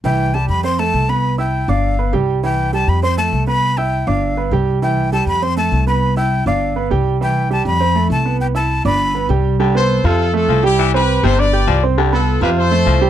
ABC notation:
X:1
M:4/4
L:1/8
Q:1/4=201
K:C
V:1 name="Flute"
g2 a b c' a2 b- | b g2 f3 z2 | g2 a b c' a2 b- | b g2 f3 z2 |
g2 a b c' a2 b- | b g2 f3 z2 | g2 a b3 a2 | g a2 b3 z2 |
z8 | z8 | z8 |]
V:2 name="Grand piano"
[E,Ee]2 [G,Gg]2 [Ccc'] [A,Aa]2 [B,Bb]- | [B,Bb] [Eee']2 [Ddd']2 [B,Bb] [G,Gg]2 | [E,Ee]2 [G,Gg]2 [Ccc'] [A,Aa]2 [B,Bb]- | [B,Bb] [Eee']2 [Ddd']2 [B,Bb] [G,Gg]2 |
[E,Ee]2 [G,Gg]2 [Ccc'] [A,Aa]2 [B,Bb]- | [B,Bb] [Eee']2 [Ddd']2 [B,Bb] [G,Gg]2 | [E,Ee]2 [G,Gg]2 [Ccc'] [A,Aa]2 [B,Bb]- | [B,Bb] [Eee']2 [Ddd']2 [B,Bb] [G,Gg]2 |
[G,Gg] [B,Bb]2 [Fff']2 [A,Aa]2 [G,Gg]- | [G,Gg] [Ccc']2 [Ggg'] [Ddd'] [Ggg']2 [Ccc'] | [G,Gg] [B,Bb]2 [Fff']2 [A,Aa]2 [G,Gg] |]
V:3 name="Trumpet section"
z8 | z8 | z8 | z8 |
z8 | z8 | z8 | z8 |
z [Ac]2 [FA]2 [FA]2 [EG]- | [EG] [GB]2 [Ac] [Bd]3 z | z [FA]2 [GB] [Ac]4 |]
V:4 name="Baritone saxophone" clef=bass
z8 | z8 | z8 | z8 |
z8 | z8 | z8 | z8 |
D,3 C,3 F,2 | E,3 C,3 F,2 | D,3 C,3 F,2 |]
V:5 name="Upright bass" clef=bass
C,,3 F,,3 C,,2- | C,,3 G,,,3 C,,2- | C,,3 F,,3 C,,2- | C,,3 G,,,3 C,,2- |
C,,3 F,,3 C,,2- | C,,3 G,,,3 C,,2- | C,,3 F,,3 C,,2- | C,,3 G,,,3 C,,2- |
C,,3 F,,3 C,,2- | C,,3 G,,,3 C,,2- | C,,3 F,,3 C,,2 |]